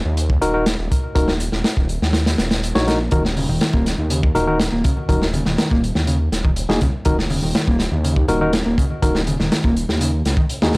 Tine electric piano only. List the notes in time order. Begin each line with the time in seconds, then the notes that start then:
0.41 D#4 F#4 A#4
0.54 D#4 F#4 A#4
1.15 D#4 F#4 A#4
2.75 D#4 F#4 C#5
2.87 D#4 F#4 A#4
3.12 D#4 F#4 A#4
4.35 D#4 F#4 A#4
4.47 D#4 F#4 A#4
5.09 D#4 F#4 A#4
6.69 D#4 F#4 G#4
7.06 D#4 F#4 A#4
8.29 D#4 F#4 A#4
8.41 D#4 F#4 A#4
9.02 D#4 F#4 A#4
10.62 D#4 F#4 G#4